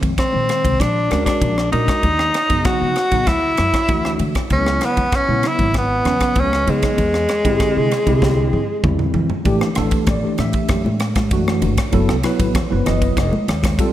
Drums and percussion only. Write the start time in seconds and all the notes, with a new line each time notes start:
0.03 kick, ride
0.18 kick, cross-stick, ride
0.49 cross-stick, ride
0.65 kick, ride
0.80 kick, cross-stick, ride
1.11 cross-stick, ride
1.26 kick, cross-stick, ride
1.42 kick, ride
1.58 cross-stick
1.73 ride
1.88 kick, cross-stick, ride
2.03 kick, ride
2.19 cross-stick
2.34 cross-stick, ride
2.50 kick, ride
2.65 kick, cross-stick, ride
2.96 cross-stick, ride
3.11 kick, ride
3.27 kick, cross-stick, ride
3.57 cross-stick, ride
3.74 kick, cross-stick, ride
3.88 kick, ride
4.05 cross-stick
4.19 ride
4.35 kick, cross-stick, ride
4.50 kick, ride
4.67 cross-stick
4.81 cross-stick, ride
4.97 kick, ride
5.12 kick, cross-stick, ride
5.43 cross-stick, ride
5.59 kick, ride
5.74 kick, cross-stick, ride
6.05 cross-stick, ride
6.20 kick, cross-stick, ride
6.35 kick, ride
6.53 cross-stick
6.67 ride
6.83 kick, cross-stick, ride
6.98 kick, ride
7.14 cross-stick
7.29 cross-stick, ride
7.45 kick, ride
7.60 kick, cross-stick, ride
7.91 cross-stick, ride
8.07 kick, ride
8.22 kick, snare
8.53 high tom
8.84 kick, mid tom
8.99 mid tom
9.14 floor tom
9.30 floor tom
9.45 kick, ride
9.61 cross-stick
9.75 cross-stick, ride, low conga
9.91 kick, ride
10.07 kick, cross-stick, ride, low conga
10.38 cross-stick, ride, low conga
10.53 kick, ride
10.68 kick, cross-stick, ride
10.86 high conga
11.00 cross-stick, ride
11.15 kick, cross-stick, ride, high conga
11.31 kick, ride
11.48 cross-stick
11.62 ride, low conga
11.77 kick, cross-stick, ride
11.93 kick, ride
12.09 cross-stick
12.23 cross-stick, ride
12.40 kick, ride
12.55 kick, cross-stick, ride, low conga
12.86 cross-stick, ride, low conga
13.02 kick, ride
13.17 kick, cross-stick, ride
13.33 high conga
13.48 cross-stick, ride
13.63 kick, cross-stick, ride, high conga
13.79 kick, ride